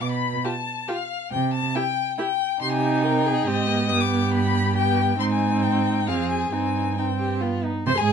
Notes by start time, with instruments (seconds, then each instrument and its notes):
0.00 cello B2, violin D6
0.12 violin B5
0.45 viola F4, violin G4 A5
0.88 viola F4, violin G4 F5
1.32 cello C3, violin G5
1.54 violin A5
1.75 viola E4, violin G4 G5
2.18 viola E4, violin G4 G5
2.62 cello C3, viola D#4, violin G4 C6
2.72 violin G#5
3.04 violin A#4 G5
3.26 violin G#4
3.47 cello G#2, viola C4, violin G4 D#5
3.68 viola B3
3.89 cello G2, violin G4 D#6
4.01 violin D6
4.34 violin B5
4.76 viola B3, violin G4 G5
5.20 cello G#2, viola C4, violin D#4 C6
5.31 violin G#5
5.63 violin G5
6.07 cello F2, viola C4, violin G#4 F5
6.30 violin G#5
6.52 cello G2, viola C4, violin D#4 G#5
6.98 viola C4, violin D#4 G5
7.20 violin G4
7.41 viola B3, violin F4
7.65 violin D#4
7.87 cello C3, violin C5 C6, viola C5
7.98 cello G#2, violin G#4 G#5, viola G#4